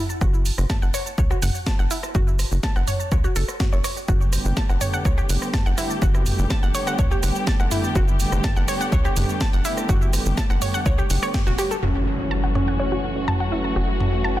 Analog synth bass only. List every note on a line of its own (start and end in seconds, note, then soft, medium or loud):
0.21 0.51 F#1 loud
0.58 0.66 F#1 medium
0.82 0.90 F#1 medium
1.18 1.34 C#2 medium
1.42 1.50 F#1 medium
1.79 1.87 F#1 loud
2.15 2.45 F#1 loud
2.52 2.59 F#1 medium
2.76 2.83 F#1 medium
3.12 3.28 C#2 medium
3.36 3.44 F#1 medium
3.73 3.80 F#1 medium
4.08 4.38 F#1 loud
4.45 4.53 F#1 medium
4.69 4.77 F#1 medium
5.05 5.21 C#2 medium
5.29 5.38 F#1 medium
5.66 5.74 F#1 medium
6.02 6.32 F#1 loud
6.39 6.46 F#1 medium
6.63 6.70 F#1 medium
6.99 7.15 C#2 medium
7.23 7.31 F#1 medium
7.60 7.67 F#1 medium
7.95 8.25 F#1 loud
8.32 8.40 F#1 medium
8.56 8.64 F#1 medium
8.92 9.08 C#2 medium
9.16 9.25 F#1 medium
9.53 9.61 F#1 medium
9.89 10.19 F#1 medium
10.26 10.33 F#1 medium
10.50 10.58 F#1 medium
10.86 11.02 C#2 medium
11.10 11.18 F#1 medium
11.47 11.54 E1 medium
11.83 13.74 F#1 medium
13.76 14.40 F#1 medium